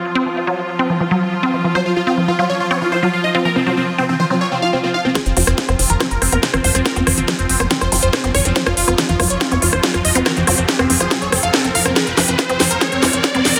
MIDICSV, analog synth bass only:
0, 0, Header, 1, 2, 480
1, 0, Start_track
1, 0, Tempo, 425532
1, 54, Time_signature, 4, 2, 24, 8
1, 15339, End_track
2, 0, Start_track
2, 0, Title_t, "Analog synth bass"
2, 0, Program_c, 0, 38
2, 5934, Note_on_c, 0, 29, 88
2, 6003, Note_off_c, 0, 29, 0
2, 6054, Note_on_c, 0, 29, 101
2, 6123, Note_off_c, 0, 29, 0
2, 6174, Note_on_c, 0, 29, 87
2, 6243, Note_off_c, 0, 29, 0
2, 6413, Note_on_c, 0, 29, 87
2, 6483, Note_off_c, 0, 29, 0
2, 6533, Note_on_c, 0, 29, 102
2, 6603, Note_off_c, 0, 29, 0
2, 6653, Note_on_c, 0, 29, 90
2, 6722, Note_off_c, 0, 29, 0
2, 6894, Note_on_c, 0, 29, 88
2, 6963, Note_off_c, 0, 29, 0
2, 7013, Note_on_c, 0, 29, 97
2, 7082, Note_off_c, 0, 29, 0
2, 7134, Note_on_c, 0, 29, 88
2, 7203, Note_off_c, 0, 29, 0
2, 7374, Note_on_c, 0, 29, 86
2, 7443, Note_off_c, 0, 29, 0
2, 7494, Note_on_c, 0, 29, 99
2, 7563, Note_off_c, 0, 29, 0
2, 7614, Note_on_c, 0, 29, 91
2, 7683, Note_off_c, 0, 29, 0
2, 7854, Note_on_c, 0, 29, 88
2, 7923, Note_off_c, 0, 29, 0
2, 7973, Note_on_c, 0, 29, 104
2, 8043, Note_off_c, 0, 29, 0
2, 8094, Note_on_c, 0, 29, 89
2, 8163, Note_off_c, 0, 29, 0
2, 8334, Note_on_c, 0, 29, 86
2, 8403, Note_off_c, 0, 29, 0
2, 8453, Note_on_c, 0, 29, 102
2, 8522, Note_off_c, 0, 29, 0
2, 8573, Note_on_c, 0, 29, 97
2, 8643, Note_off_c, 0, 29, 0
2, 8814, Note_on_c, 0, 29, 86
2, 8883, Note_off_c, 0, 29, 0
2, 8933, Note_on_c, 0, 29, 98
2, 9003, Note_off_c, 0, 29, 0
2, 9054, Note_on_c, 0, 29, 91
2, 9123, Note_off_c, 0, 29, 0
2, 9294, Note_on_c, 0, 29, 89
2, 9363, Note_off_c, 0, 29, 0
2, 9413, Note_on_c, 0, 29, 97
2, 9483, Note_off_c, 0, 29, 0
2, 9534, Note_on_c, 0, 29, 91
2, 9603, Note_off_c, 0, 29, 0
2, 9774, Note_on_c, 0, 29, 89
2, 9843, Note_off_c, 0, 29, 0
2, 9893, Note_on_c, 0, 29, 101
2, 9963, Note_off_c, 0, 29, 0
2, 10014, Note_on_c, 0, 29, 89
2, 10083, Note_off_c, 0, 29, 0
2, 10253, Note_on_c, 0, 29, 90
2, 10322, Note_off_c, 0, 29, 0
2, 10373, Note_on_c, 0, 29, 104
2, 10443, Note_off_c, 0, 29, 0
2, 10494, Note_on_c, 0, 29, 93
2, 10563, Note_off_c, 0, 29, 0
2, 10734, Note_on_c, 0, 29, 86
2, 10803, Note_off_c, 0, 29, 0
2, 10854, Note_on_c, 0, 29, 99
2, 10923, Note_off_c, 0, 29, 0
2, 10974, Note_on_c, 0, 29, 90
2, 11043, Note_off_c, 0, 29, 0
2, 11214, Note_on_c, 0, 29, 86
2, 11283, Note_off_c, 0, 29, 0
2, 11334, Note_on_c, 0, 29, 102
2, 11403, Note_off_c, 0, 29, 0
2, 11454, Note_on_c, 0, 29, 91
2, 11523, Note_off_c, 0, 29, 0
2, 11694, Note_on_c, 0, 29, 92
2, 11763, Note_off_c, 0, 29, 0
2, 11814, Note_on_c, 0, 29, 107
2, 11883, Note_off_c, 0, 29, 0
2, 11934, Note_on_c, 0, 29, 87
2, 12003, Note_off_c, 0, 29, 0
2, 12174, Note_on_c, 0, 29, 88
2, 12243, Note_off_c, 0, 29, 0
2, 12294, Note_on_c, 0, 29, 102
2, 12363, Note_off_c, 0, 29, 0
2, 12414, Note_on_c, 0, 29, 92
2, 12483, Note_off_c, 0, 29, 0
2, 12654, Note_on_c, 0, 29, 84
2, 12723, Note_off_c, 0, 29, 0
2, 12774, Note_on_c, 0, 29, 100
2, 12843, Note_off_c, 0, 29, 0
2, 12894, Note_on_c, 0, 29, 91
2, 12963, Note_off_c, 0, 29, 0
2, 13134, Note_on_c, 0, 29, 86
2, 13203, Note_off_c, 0, 29, 0
2, 13254, Note_on_c, 0, 29, 97
2, 13323, Note_off_c, 0, 29, 0
2, 13374, Note_on_c, 0, 29, 90
2, 13443, Note_off_c, 0, 29, 0
2, 13614, Note_on_c, 0, 29, 87
2, 13683, Note_off_c, 0, 29, 0
2, 13734, Note_on_c, 0, 29, 104
2, 13803, Note_off_c, 0, 29, 0
2, 13854, Note_on_c, 0, 29, 92
2, 13923, Note_off_c, 0, 29, 0
2, 14094, Note_on_c, 0, 29, 85
2, 14163, Note_off_c, 0, 29, 0
2, 14214, Note_on_c, 0, 29, 104
2, 14283, Note_off_c, 0, 29, 0
2, 14334, Note_on_c, 0, 29, 94
2, 14403, Note_off_c, 0, 29, 0
2, 14574, Note_on_c, 0, 29, 88
2, 14643, Note_off_c, 0, 29, 0
2, 14694, Note_on_c, 0, 29, 97
2, 14763, Note_off_c, 0, 29, 0
2, 14813, Note_on_c, 0, 29, 91
2, 14882, Note_off_c, 0, 29, 0
2, 15054, Note_on_c, 0, 29, 88
2, 15123, Note_off_c, 0, 29, 0
2, 15174, Note_on_c, 0, 29, 96
2, 15243, Note_off_c, 0, 29, 0
2, 15294, Note_on_c, 0, 29, 95
2, 15339, Note_off_c, 0, 29, 0
2, 15339, End_track
0, 0, End_of_file